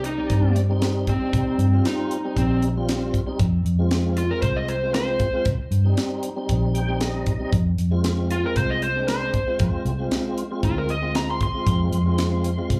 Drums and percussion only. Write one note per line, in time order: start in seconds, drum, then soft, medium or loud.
0.04 closed hi-hat medium
0.30 kick medium
0.30 closed hi-hat medium
0.56 closed hi-hat medium
0.82 snare loud
0.82 closed hi-hat medium
1.07 kick medium
1.07 closed hi-hat soft
1.33 kick loud
1.33 closed hi-hat medium
1.59 closed hi-hat medium
1.85 snare loud
1.85 closed hi-hat medium
2.11 closed hi-hat medium
2.37 kick medium
2.37 closed hi-hat medium
2.62 closed hi-hat medium
2.89 snare loud
2.89 closed hi-hat medium
3.14 kick medium
3.14 closed hi-hat medium
3.39 kick loud
3.39 closed hi-hat medium
3.66 closed hi-hat medium
3.91 snare loud
3.91 closed hi-hat medium
4.17 closed hi-hat medium
4.42 kick medium
4.42 closed hi-hat medium
4.68 closed hi-hat medium
4.94 snare loud
4.94 closed hi-hat medium
5.19 kick medium
5.19 closed hi-hat medium
5.45 kick loud
5.45 closed hi-hat medium
5.72 closed hi-hat medium
5.97 snare loud
5.97 closed hi-hat medium
6.23 closed hi-hat medium
6.49 kick medium
6.49 closed hi-hat medium
6.75 closed hi-hat medium
7.01 snare loud
7.01 closed hi-hat medium
7.26 kick medium
7.26 closed hi-hat medium
7.53 kick loud
7.53 closed hi-hat medium
7.78 closed hi-hat medium
8.04 snare loud
8.04 closed hi-hat medium
8.30 closed hi-hat medium
8.56 kick medium
8.56 closed hi-hat medium
8.82 closed hi-hat soft
9.08 snare loud
9.08 closed hi-hat medium
9.34 kick medium
9.34 closed hi-hat medium
9.59 kick loud
9.59 closed hi-hat medium
9.86 closed hi-hat soft
10.11 snare loud
10.11 closed hi-hat medium
10.38 closed hi-hat medium
10.63 kick medium
10.63 closed hi-hat medium
10.89 closed hi-hat soft
11.15 snare loud
11.15 closed hi-hat medium
11.41 kick medium
11.41 closed hi-hat medium
11.67 kick loud
11.67 closed hi-hat medium
11.93 closed hi-hat medium
12.18 snare loud
12.18 closed hi-hat medium
12.44 closed hi-hat medium
12.70 kick medium
12.70 closed hi-hat medium